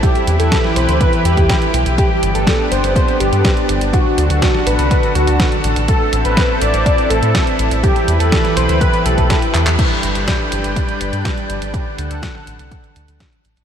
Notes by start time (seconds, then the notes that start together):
Already playing: E4
0.03 E3 G4 B4, kick, closed hi-hat
0.15 closed hi-hat
0.27 E2, closed hi-hat
0.39 E2 A4, closed hi-hat
0.52 kick, snare, closed hi-hat
0.64 snare
0.76 B1 C5, closed hi-hat
0.88 D2, closed hi-hat
1.01 B4, kick, closed hi-hat
1.13 closed hi-hat
1.25 E2 G4, closed hi-hat
1.37 E2, kick, closed hi-hat
1.49 kick, snare, closed hi-hat
1.62 closed hi-hat
1.74 B1, closed hi-hat
1.86 B1, closed hi-hat
1.98 B3 D4 G4, kick, closed hi-hat
2.23 G1, closed hi-hat
2.35 G1 A4, closed hi-hat
2.47 kick, snare, closed hi-hat
2.71 G1 C5, closed hi-hat
2.84 G1, closed hi-hat
2.96 C5, kick, closed hi-hat
3.08 closed hi-hat
3.20 G1 G4, closed hi-hat
3.32 G2, closed hi-hat
3.45 kick, snare, closed hi-hat
3.57 closed hi-hat
3.69 G1, closed hi-hat
3.81 G1, closed hi-hat
3.93 D3 F#4 A4, kick, closed hi-hat
4.18 D2, closed hi-hat
4.30 D2 F#4, closed hi-hat
4.42 kick, snare, closed hi-hat
4.55 snare
4.67 A1 B4, closed hi-hat
4.79 C2, closed hi-hat
4.91 B4, kick, closed hi-hat
5.03 closed hi-hat
5.15 D2 F#4, closed hi-hat
5.27 D2, closed hi-hat
5.40 kick, snare, closed hi-hat
5.52 closed hi-hat
5.64 A1, closed hi-hat
5.76 A1, closed hi-hat
5.88 C4 E4 A4, kick, closed hi-hat
6.13 A1, closed hi-hat
6.25 A1 B4, closed hi-hat
6.37 kick, snare, closed hi-hat
6.61 A1 D5, closed hi-hat
6.74 A1, closed hi-hat
6.86 D5, kick, closed hi-hat
6.98 closed hi-hat
7.10 A1 A4, closed hi-hat
7.23 A2, closed hi-hat
7.35 kick, snare, closed hi-hat
7.47 closed hi-hat
7.59 A1, closed hi-hat
7.71 A1, closed hi-hat
7.83 E3 G4 B4, kick, closed hi-hat
7.96 closed hi-hat
8.08 E2, closed hi-hat
8.20 E2 A4, closed hi-hat
8.32 kick, snare, closed hi-hat
8.45 snare, closed hi-hat
8.57 B1 C5, closed hi-hat
8.69 D2, closed hi-hat
8.81 B4, kick, closed hi-hat
8.93 closed hi-hat
9.06 B1 A4, closed hi-hat
9.18 B1, kick, closed hi-hat
9.30 kick, snare, closed hi-hat
9.42 closed hi-hat
9.54 E2, clap, closed hi-hat
9.67 E2, clap, closed hi-hat
9.79 G3 D4 B4 G5, kick, closed hi-hat, crash
10.03 G1, closed hi-hat
10.15 G1, closed hi-hat
10.28 kick, snare, closed hi-hat
10.52 G1, closed hi-hat
10.64 G1, closed hi-hat
10.76 kick, closed hi-hat
10.89 closed hi-hat
11.01 G1, closed hi-hat
11.13 G2, closed hi-hat
11.25 kick, snare, closed hi-hat
11.38 closed hi-hat
11.49 G1, closed hi-hat
11.62 G1, closed hi-hat
11.74 D3 A4 F#5, kick, closed hi-hat
11.98 D2, closed hi-hat
12.11 D2, closed hi-hat
12.23 kick, snare, closed hi-hat
12.35 snare
12.47 A1, closed hi-hat
12.59 C2, closed hi-hat
12.71 kick, closed hi-hat
12.84 closed hi-hat
12.96 D2, closed hi-hat
13.08 D2, closed hi-hat
13.20 kick, snare, closed hi-hat
13.33 closed hi-hat
13.45 A1, closed hi-hat
13.57 A1, closed hi-hat